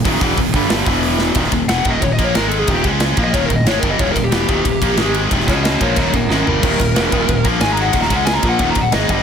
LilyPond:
<<
  \new Staff \with { instrumentName = "Lead electric guitar" } { \time 4/4 \tempo 4 = 182 r1 | r4 \tuplet 3/2 { ges''4 ees''8 des''8 ees''8 des''8 bes'8 a'8 aes'8 } | g'8 r8 \tuplet 3/2 { r4 ees''8 des''8 bes'8 ees''8 des''8 bes'8 ees''8 } | \tuplet 3/2 { des''8 bes'8 g'8~ } g'2~ g'8 r8 |
r8 <ges' ees''>8 <ges' ees''>8 <bes' des''>8 <bes' des''>8 <des' bes'>8 <des' bes'>8 bes'8~ | bes'2~ bes'8 r8 \tuplet 3/2 { aes''8 bes''8 ges''8 } | \tuplet 3/2 { ges''8 bes''8 ges''8 aes''8 bes''8 ges''8 ges''8 bes''8 ges''8 } ees''4 | }
  \new Staff \with { instrumentName = "Overdriven electric guitar" } { \clef bass \time 4/4 <ees, bes, ees>8 <fes, ces fes>8 <ees, bes,>8 <g, d g>8 <g, d g>8 <e, b, e>4. | r1 | r1 | r1 |
r1 | <ees, bes, ees>8 <ees, bes,>8 <fes, ces fes>8 <ees, bes, ees>8 <ees, bes,>8 <bes, f bes>8 <aes, ees aes>4 | <ees, bes, ees>8 <des aes des'>4 <bes, f bes>8 <ees, bes, ees>8 <ees, bes,>8 <aes, ees aes>8 <g, d g>8 | }
  \new Staff \with { instrumentName = "Distorted electric guitar" } { \clef bass \time 4/4 <ees, bes, ees>8 <fes, ces fes>8 <ees, bes,>8 <g, d g>8 <g, d g>8 <e, b, e>4. | <ees, bes, ees>8 <ees, bes,>8 <fes, ces fes>8 <ees, bes, ees>8 <ees, bes,>8 <bes, f bes>8 <aes, ees aes>4 | <ees, bes, ees>8 <des aes des'>4 <bes, f bes>8 <ees, bes, ees>8 <ees, bes,>8 <aes, ees aes>8 <g, d g>8 | <ees, bes, ees>8 <ees, bes,>8 <fes, ces fes>8 <ees, bes, ees>8 <ees, bes,>8 <bes, f bes>8 <aes, ees aes>4 |
<ees, bes, ees>8 <des aes des'>4 <bes, f bes>8 <ees, bes, ees>8 <ees, bes,>8 <aes, ees aes>8 <g, d g>8 | <ees, bes, ees>8 <ees, bes,>8 <fes, ces fes>8 <ees, bes, ees>8 <ees, bes,>8 <bes, f bes>8 <aes, ees aes>4 | <ees, bes, ees>8 <des aes des'>4 <bes, f bes>8 <ees, bes, ees>8 <ees, bes,>8 <aes, ees aes>8 <g, d g>8 | }
  \new Staff \with { instrumentName = "Distorted electric guitar" } { \clef bass \time 4/4 <ees, bes, ees>8 <fes, ces fes>8 <ees, bes,>8 <g, d g>8 <g, d g>8 <e, b, e>4. | <ees, bes, ees>8 <ees, bes,>8 <fes, ces fes>8 <ees, bes, ees>8 <ees, bes,>8 <bes, f bes>8 <aes, ees aes>4 | <ees, bes, ees>8 <des aes des'>4 <bes, f bes>8 <ees, bes, ees>8 <ees, bes,>8 <aes, ees aes>8 <g, d g>8 | <ees, bes, ees>8 <ees, bes,>8 <fes, ces fes>8 <ees, bes, ees>8 <ees, bes,>8 <bes, f bes>8 <aes, ees aes>4 |
<ees, bes, ees>8 <des aes des'>4 <bes, f bes>8 <ees, bes, ees>8 <ees, bes,>8 <aes, ees aes>8 <g, d g>8 | <ees, bes, ees>8 <ees, bes,>8 <fes, ces fes>8 <ees, bes, ees>8 <ees, bes,>8 <bes, f bes>8 <aes, ees aes>4 | <ees, bes, ees>8 <des aes des'>4 <bes, f bes>8 <ees, bes, ees>8 <ees, bes,>8 <aes, ees aes>8 <g, d g>8 | }
  \new Staff \with { instrumentName = "Fingered electric bass" } { \clef bass \time 4/4 ees,,8 fes,,8 ees,,8 g,,8 g,,8 e,,4. | ees,,8 ees,,8 fes,,8 ees,,8 ees,,8 bes,,8 aes,,4 | ees,,8 des,4 bes,,8 ees,,8 ees,,8 aes,,8 g,,8 | ees,,8 ees,,8 fes,,8 ees,,8 ees,,8 bes,,8 aes,,4 |
ees,,8 des,4 bes,,8 ees,,8 ees,,8 aes,,8 g,,8 | ees,,8 ees,,8 fes,,8 ees,,8 ees,,8 bes,,8 aes,,4 | ees,,8 des,4 bes,,8 ees,,8 ees,,8 aes,,8 g,,8 | }
  \new DrumStaff \with { instrumentName = "Drums" } \drummode { \time 4/4 <hho bd>8 <hho bd>8 <hho bd>8 <hho bd>8 <hho sn>8 <hho bd>8 hho8 sn8 | <bd cymr>16 sn16 <bd cymr sn>8 <cymr sn>8 <bd cymr>8 <bd cymr>8 <bd cymr>8 <cymr sn>8 cymr8 | <bd cymr>8 <bd cymr>8 <cymr sn>8 <bd cymr>8 <bd cymr>8 <bd cymr>8 <cymr sn>8 <bd cymr>8 | <bd cymr>8 <bd cymr sn>8 <cymr sn>8 <bd cymr>8 <bd cymr>8 <bd cymr>8 <cymr sn>8 cymr8 |
<bd cymr>16 sn16 <bd cymr sn>8 <cymr sn>8 <bd cymr>8 <bd cymr>8 <bd cymr>8 sn8 tomfh8 | <cymc bd>8 <bd cymr sn>8 <cymr sn>8 <bd cymr>8 <bd cymr>8 <bd cymr>8 <cymr sn>8 cymr8 | <bd cymr>16 sn16 <bd cymr sn>8 <cymr sn>8 <bd cymr>8 <bd cymr>8 <bd cymr>8 <cymr sn>8 <bd cymr>8 | }
>>